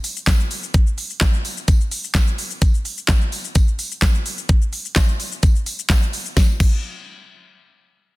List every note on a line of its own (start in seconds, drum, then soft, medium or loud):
0.04 open hi-hat medium
0.04 tambourine medium
0.04 shaker medium
0.16 shaker medium
0.27 kick loud
0.27 snare loud
0.27 clap loud
0.27 closed hi-hat medium
0.27 tambourine medium
0.27 shaker medium
0.40 shaker medium
0.51 open hi-hat medium
0.51 tambourine soft
0.51 shaker medium
0.63 shaker medium
0.74 kick loud
0.74 closed hi-hat medium
0.74 shaker medium
0.87 shaker medium
0.98 open hi-hat medium
0.98 tambourine soft
0.98 shaker medium
1.10 shaker medium
1.21 kick loud
1.21 snare loud
1.21 clap loud
1.21 closed hi-hat medium
1.21 tambourine medium
1.21 shaker medium
1.34 shaker medium
1.45 open hi-hat medium
1.45 tambourine medium
1.45 shaker medium
1.57 shaker medium
1.68 kick loud
1.68 closed hi-hat medium
1.68 tambourine medium
1.68 shaker medium
1.81 shaker medium
1.91 open hi-hat medium
1.91 tambourine medium
1.91 shaker medium
2.04 shaker medium
2.15 kick loud
2.15 snare loud
2.15 clap loud
2.15 closed hi-hat medium
2.15 tambourine medium
2.15 shaker medium
2.27 shaker medium
2.38 open hi-hat medium
2.38 tambourine soft
2.38 shaker medium
2.51 shaker medium
2.62 kick loud
2.62 closed hi-hat medium
2.62 tambourine soft
2.62 shaker medium
2.74 shaker medium
2.85 open hi-hat medium
2.85 shaker medium
2.98 shaker medium
3.08 kick loud
3.08 snare loud
3.08 clap loud
3.08 closed hi-hat medium
3.08 tambourine medium
3.08 shaker medium
3.21 shaker medium
3.32 open hi-hat medium
3.32 tambourine medium
3.32 shaker medium
3.44 shaker medium
3.55 kick loud
3.55 closed hi-hat medium
3.55 tambourine medium
3.55 shaker medium
3.68 shaker medium
3.79 open hi-hat medium
3.79 tambourine medium
3.79 shaker medium
3.91 shaker medium
4.02 kick loud
4.02 snare loud
4.02 clap loud
4.02 closed hi-hat medium
4.02 tambourine medium
4.02 shaker medium
4.15 shaker medium
4.26 open hi-hat medium
4.26 tambourine soft
4.26 shaker medium
4.38 shaker medium
4.49 kick loud
4.49 closed hi-hat medium
4.49 shaker medium
4.62 shaker medium
4.73 open hi-hat medium
4.73 tambourine soft
4.73 shaker medium
4.85 shaker medium
4.96 kick loud
4.96 snare loud
4.96 clap loud
4.96 closed hi-hat medium
4.96 tambourine medium
4.96 shaker medium
5.09 shaker medium
5.20 open hi-hat medium
5.20 tambourine medium
5.20 shaker medium
5.32 shaker medium
5.43 kick loud
5.43 closed hi-hat medium
5.43 tambourine medium
5.43 shaker medium
5.56 shaker soft
5.66 open hi-hat medium
5.66 tambourine medium
5.66 shaker medium
5.79 shaker medium
5.90 kick loud
5.90 snare medium
5.90 clap loud
5.90 closed hi-hat medium
5.90 tambourine loud
5.90 shaker medium
6.02 shaker medium
6.13 open hi-hat medium
6.13 tambourine soft
6.13 shaker medium
6.25 shaker medium
6.37 kick loud
6.37 snare loud
6.37 tambourine medium
6.60 kick loud
6.60 crash medium
6.60 tambourine medium